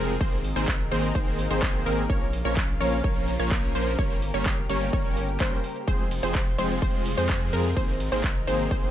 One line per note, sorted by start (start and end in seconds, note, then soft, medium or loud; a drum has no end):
0.00 0.18 F1 loud
0.00 2.06 C3 medium
0.00 0.13 F3 medium
0.00 0.13 G#3 medium
0.00 2.06 G#3 medium
0.00 0.13 C4 medium
0.00 0.19 F4 medium
0.00 0.13 G#4 medium
0.00 0.13 A#4 medium
0.00 0.19 C5 medium
0.09 closed hi-hat medium
0.09 cabasa soft
0.21 0.54 G#1 loud
0.21 0.37 D#3 medium
0.21 0.37 A#3 medium
0.21 0.37 C4 medium
0.21 2.08 D#4 medium
0.21 0.37 G#4 medium
0.21 2.08 A#4 medium
0.21 0.37 C5 loud
0.21 kick loud
0.21 closed hi-hat medium
0.21 cabasa soft
0.32 closed hi-hat soft
0.44 open hi-hat loud
0.44 cabasa medium
0.56 0.89 G#1 loud
0.56 0.72 D#3 medium
0.56 0.72 A#3 medium
0.56 0.72 C4 medium
0.56 0.72 G#4 medium
0.56 0.72 C5 medium
0.56 closed hi-hat medium
0.56 cabasa soft
0.68 kick loud
0.68 clap loud
0.68 closed hi-hat medium
0.68 cabasa soft
0.80 closed hi-hat soft
0.91 1.13 G#1 medium
0.91 1.07 D#3 medium
0.91 1.07 A#3 medium
0.91 1.07 C4 medium
0.91 1.07 G#4 medium
0.91 1.07 C5 loud
0.91 open hi-hat loud
0.91 cabasa medium
1.03 closed hi-hat medium
1.03 cabasa soft
1.15 1.48 G#1 loud
1.15 1.41 D#3 medium
1.15 1.41 A#3 medium
1.15 1.41 C4 medium
1.15 1.41 G#4 medium
1.15 1.41 C5 medium
1.15 kick loud
1.15 closed hi-hat medium
1.15 cabasa soft
1.27 closed hi-hat soft
1.27 cabasa soft
1.39 open hi-hat loud
1.39 cabasa medium
1.51 1.84 G#1 loud
1.51 1.83 D#3 medium
1.51 1.83 A#3 medium
1.51 1.83 C4 medium
1.51 1.83 G#4 medium
1.51 1.83 C5 medium
1.51 closed hi-hat medium
1.51 cabasa soft
1.62 kick loud
1.62 clap loud
1.62 closed hi-hat medium
1.62 cabasa soft
1.74 closed hi-hat soft
1.86 2.07 G#1 loud
1.86 2.02 D#3 medium
1.86 2.02 A#3 medium
1.86 2.02 C4 medium
1.86 2.02 G#4 medium
1.86 2.02 A#4 medium
1.86 open hi-hat loud
1.86 cabasa medium
1.98 closed hi-hat medium
1.98 cabasa soft
2.10 2.43 A#1 loud
2.10 3.97 C#3 medium
2.10 2.25 F3 medium
2.10 2.25 A#3 medium
2.10 5.84 A#3 medium
2.10 2.25 C#4 medium
2.10 3.97 F4 medium
2.10 5.84 A#4 medium
2.10 2.25 A#4 medium
2.10 2.25 C#5 loud
2.10 2.26 C#5 loud
2.10 kick loud
2.10 closed hi-hat medium
2.10 cabasa soft
2.21 closed hi-hat soft
2.33 open hi-hat loud
2.33 cabasa medium
2.45 2.78 A#1 loud
2.45 2.61 F3 medium
2.45 2.61 A#3 medium
2.45 2.61 C#4 medium
2.45 2.61 A#4 medium
2.45 2.61 C#5 medium
2.45 closed hi-hat medium
2.45 cabasa soft
2.57 kick loud
2.57 clap loud
2.57 closed hi-hat medium
2.57 cabasa soft
2.69 closed hi-hat soft
2.81 3.02 A#1 medium
2.81 2.96 F3 medium
2.81 2.96 A#3 medium
2.81 2.96 C#4 medium
2.81 2.96 A#4 medium
2.81 2.96 C#5 loud
2.81 2.96 C#5 medium
2.81 open hi-hat loud
2.81 cabasa medium
2.92 closed hi-hat medium
2.92 cabasa soft
3.04 3.37 A#1 loud
3.04 3.29 F3 medium
3.04 3.29 A#3 medium
3.04 3.29 C#4 medium
3.04 3.29 A#4 medium
3.04 3.29 C#5 medium
3.04 kick loud
3.04 closed hi-hat medium
3.04 cabasa soft
3.16 closed hi-hat soft
3.16 cabasa soft
3.28 open hi-hat loud
3.28 cabasa medium
3.40 3.73 A#1 medium
3.40 3.72 F3 medium
3.40 3.72 A#3 medium
3.40 3.72 C#4 medium
3.40 3.72 A#4 medium
3.40 3.72 C#5 medium
3.40 closed hi-hat medium
3.40 cabasa soft
3.51 kick loud
3.51 clap loud
3.51 closed hi-hat medium
3.51 cabasa soft
3.63 closed hi-hat soft
3.75 3.96 A#1 loud
3.75 3.91 F3 medium
3.75 3.91 A#3 medium
3.75 3.91 C#4 medium
3.75 3.91 A#4 medium
3.75 3.91 C5 medium
3.75 open hi-hat loud
3.75 cabasa medium
3.87 closed hi-hat medium
3.87 cabasa soft
3.99 4.32 G1 loud
3.99 5.86 C#3 medium
3.99 4.14 G3 medium
3.99 4.14 A#3 medium
3.99 4.14 C#4 medium
3.99 5.86 G4 medium
3.99 4.14 A#4 medium
3.99 4.14 C#5 loud
3.99 kick loud
3.99 closed hi-hat medium
3.99 cabasa soft
4.10 closed hi-hat soft
4.22 open hi-hat loud
4.22 cabasa medium
4.34 4.67 G1 loud
4.34 4.50 G3 medium
4.34 4.50 A#3 medium
4.34 4.50 C#4 medium
4.34 4.50 A#4 medium
4.34 4.50 C#5 medium
4.34 closed hi-hat soft
4.34 cabasa soft
4.46 kick loud
4.46 clap loud
4.46 closed hi-hat medium
4.46 cabasa soft
4.58 closed hi-hat soft
4.69 4.91 G1 medium
4.69 4.85 G3 medium
4.69 4.85 A#3 medium
4.69 4.85 C#4 medium
4.69 4.85 A#4 medium
4.69 4.85 C#5 loud
4.69 open hi-hat loud
4.69 cabasa medium
4.81 closed hi-hat medium
4.81 cabasa soft
4.93 5.38 G1 loud
4.93 5.18 G3 medium
4.93 5.18 A#3 medium
4.93 5.19 C#4 medium
4.93 5.18 A#4 medium
4.93 5.18 C#5 medium
4.93 kick loud
4.93 closed hi-hat soft
4.93 cabasa soft
5.05 closed hi-hat soft
5.05 cabasa soft
5.17 open hi-hat loud
5.17 cabasa medium
5.29 closed hi-hat medium
5.29 cabasa soft
5.40 5.54 G1 loud
5.40 5.56 G3 medium
5.40 5.56 A#3 medium
5.40 5.56 C#4 medium
5.40 5.56 A#4 medium
5.40 5.56 C5 loud
5.40 kick loud
5.40 clap loud
5.40 closed hi-hat medium
5.40 cabasa soft
5.52 closed hi-hat soft
5.64 open hi-hat loud
5.64 cabasa medium
5.76 closed hi-hat soft
5.76 cabasa soft
5.88 6.21 F1 loud
5.88 8.91 C3 medium
5.88 6.03 F3 medium
5.88 8.91 G#3 medium
5.88 6.03 G#3 medium
5.88 6.03 C4 medium
5.88 7.75 F4 medium
5.88 6.03 G#4 medium
5.88 7.75 C5 medium
5.88 6.03 C5 loud
5.88 kick loud
5.88 closed hi-hat medium
5.88 cabasa soft
5.99 closed hi-hat soft
6.11 open hi-hat loud
6.11 ride medium
6.11 cabasa medium
6.23 6.56 F1 loud
6.23 6.39 F3 medium
6.23 6.39 G#3 medium
6.23 6.39 C4 medium
6.23 6.39 G#4 medium
6.23 6.39 C5 medium
6.23 closed hi-hat medium
6.23 cabasa soft
6.35 kick loud
6.35 clap loud
6.35 closed hi-hat medium
6.35 cabasa soft
6.47 closed hi-hat soft
6.58 6.80 F1 medium
6.58 6.74 F3 medium
6.58 6.74 G#3 medium
6.58 6.74 C4 medium
6.58 6.74 G#4 medium
6.58 6.74 C5 medium
6.58 6.74 C5 loud
6.58 open hi-hat medium
6.58 ride medium
6.58 cabasa medium
6.70 closed hi-hat medium
6.70 cabasa soft
6.82 7.15 F1 loud
6.82 7.07 F3 medium
6.82 7.07 G#3 medium
6.82 7.07 C4 medium
6.82 7.07 G#4 medium
6.82 7.07 C5 medium
6.82 kick loud
6.82 closed hi-hat medium
6.82 cabasa soft
6.94 closed hi-hat soft
6.94 cabasa soft
7.06 open hi-hat loud
7.06 ride medium
7.06 cabasa medium
7.17 7.51 F2 loud
7.17 7.50 F3 medium
7.17 7.50 G#3 medium
7.17 7.50 C4 medium
7.17 7.50 G#4 medium
7.17 7.50 C5 medium
7.17 closed hi-hat medium
7.17 cabasa soft
7.29 kick loud
7.29 clap loud
7.29 closed hi-hat medium
7.29 cabasa soft
7.41 closed hi-hat soft
7.53 7.74 F2 loud
7.53 7.69 F3 medium
7.53 7.69 G#3 medium
7.53 7.69 C4 medium
7.53 7.69 G#4 medium
7.53 7.69 A#4 medium
7.53 open hi-hat medium
7.53 ride medium
7.53 cabasa medium
7.65 closed hi-hat soft
7.65 cabasa soft
7.77 8.10 G#1 loud
7.77 7.92 D#3 medium
7.77 7.92 A#3 medium
7.77 7.92 C4 medium
7.77 8.91 D#4 medium
7.77 7.92 G#4 medium
7.77 8.91 A#4 medium
7.77 7.92 C5 loud
7.77 kick loud
7.77 closed hi-hat medium
7.77 cabasa soft
7.88 closed hi-hat soft
8.00 open hi-hat loud
8.00 ride medium
8.00 cabasa medium
8.12 8.45 G#1 loud
8.12 8.28 D#3 medium
8.12 8.28 A#3 medium
8.12 8.28 C4 medium
8.12 8.28 G#4 medium
8.12 8.28 C5 medium
8.12 closed hi-hat medium
8.12 cabasa soft
8.24 kick loud
8.24 clap loud
8.24 closed hi-hat medium
8.24 cabasa soft
8.36 closed hi-hat soft
8.47 8.69 G#1 medium
8.47 8.63 D#3 medium
8.47 8.63 A#3 medium
8.47 8.63 C4 medium
8.47 8.63 G#4 medium
8.47 8.63 C5 loud
8.47 8.63 C5 medium
8.47 open hi-hat medium
8.47 ride medium
8.47 cabasa medium
8.59 closed hi-hat medium
8.59 cabasa soft
8.71 8.91 G#1 loud
8.71 8.91 D#3 medium
8.71 8.91 A#3 medium
8.71 8.91 C4 medium
8.71 8.91 G#4 medium
8.71 8.91 C5 medium
8.71 kick loud
8.71 closed hi-hat medium
8.71 cabasa soft
8.83 closed hi-hat soft
8.83 cabasa soft